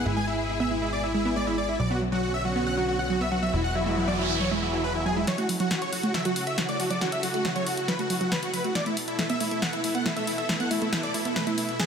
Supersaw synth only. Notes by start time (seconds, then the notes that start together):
0.06 E4
0.17 G#5
0.27 E4
0.38 E4
0.49 E4
0.60 E5
0.71 E4
0.82 E4
0.93 D5
1.03 E4
1.14 E4
1.25 E4
1.36 D5
1.47 E4
1.58 D5
1.69 E4
1.80 D5
1.91 F#4
2.12 F#4
2.23 F#4
2.34 E5
2.45 F#4
2.56 F#4
2.67 F#5
2.77 F#4
2.88 F#4
2.99 F#5
3.10 F#4
3.21 E5
3.32 F#4
3.43 E5
3.53 E4
3.64 F#5
3.75 E4
3.86 E4
3.97 E4
4.08 D5
4.19 E4
4.30 E4
4.40 C#5
4.51 E4
4.62 E4
4.73 E4
4.84 B4
4.95 E4
5.06 G#4
5.17 E4
5.28 C#5
5.38 F#4
5.60 F#4
5.71 F#4
5.82 C#5
5.93 F#4
6.04 F#4
6.14 E5
6.25 F#4
6.36 F#4
6.47 E5
6.58 F#4
6.69 D5
6.80 F#4
6.90 D5
7.01 F#4
7.12 E5
7.23 F#4
7.34 F#4
7.45 F#4
7.56 C#5
7.67 F#4
7.77 F#4
7.88 B4
7.99 F#4
8.10 F#4
8.21 F#4
8.32 B4
8.43 F#4
8.54 B4
8.64 F#4
8.75 D5
8.86 E4
9.08 E4
9.19 E4
9.30 E5
9.41 E4
9.51 E4
9.62 F#5
9.73 E4
9.84 E4
9.95 F#5
10.06 E4
10.16 E5
10.27 E4
10.38 E5
10.49 E4
10.60 F#5
10.71 E4
10.82 E4
10.92 E4
11.03 D5
11.14 E4
11.25 E4
11.36 B4
11.47 E4
11.58 E4
11.69 E4
11.79 G#4